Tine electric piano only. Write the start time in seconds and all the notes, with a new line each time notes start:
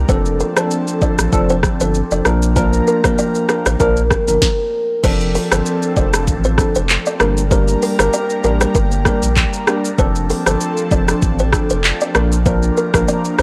0.08 F3 C4 D4 A4
0.56 F3 C4 D4 A4
1.01 F3 C4 D4 A4
1.32 F3 C4 D4 A4
1.80 F3 C4 D4 A4
2.11 F3 C4 D4 A4
2.25 F3 A#3 D4 A#4
2.56 F3 A#3 D4 A#4
3.04 F3 A#3 D4 A#4
3.49 F3 A#3 D4 A#4
3.80 F3 A#3 D4 A#4
4.28 F3 A#3 D4 A#4
5.03 F3 C4 D4 A4
5.51 F3 C4 D4 A4
5.96 F3 C4 D4 A4
6.58 F3 C4 D4 A4
7.20 G3 A#3 D4 A#4
7.51 G3 A#3 D4 A#4
7.99 G3 A#3 D4 A#4
8.44 G3 A#3 D4 A#4
9.05 G3 A#3 D4 A#4
9.67 G3 A#3 D4 A#4
9.98 F3 C4 D4 A4
10.46 F3 C4 D4 A4
10.91 F3 C4 D4 A4
11.53 F3 C4 D4 A4
12.15 F3 A#3 D4 A#4
12.46 F3 A#3 D4 A#4
12.94 F3 A#3 D4 A#4
13.38 F3 A#3 D4 A#4